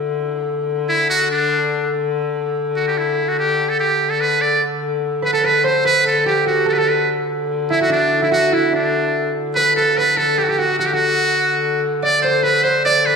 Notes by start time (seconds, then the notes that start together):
Already playing: D3 D4 E4 F#4
0.89 E4
1.10 F#4
1.31 D4
2.76 F#4
2.87 G4
2.98 E4
3.28 F#4
3.39 G4
3.69 A4
3.80 G4
4.10 A4
4.21 B4
4.41 D5
4.62 D3
5.22 B4
5.33 A4
5.44 B4
5.64 C5
5.85 B4
6.05 A4
6.26 G4
6.46 F#4
6.66 A4
6.73 B4
6.77 A4
6.89 B4
7.70 E4
7.80 F#4
7.89 D4
8.22 E4
8.32 F#4
8.52 E4
8.72 D4
9.55 D3 B4
9.76 A4
9.97 B4
10.17 A4
10.38 G4
10.43 F#4
10.48 G4
10.59 F#4
10.79 F#4
10.86 G4
10.93 F#4
12.03 D5
12.22 C5
12.43 B4
12.63 C5
12.85 D5
13.06 B4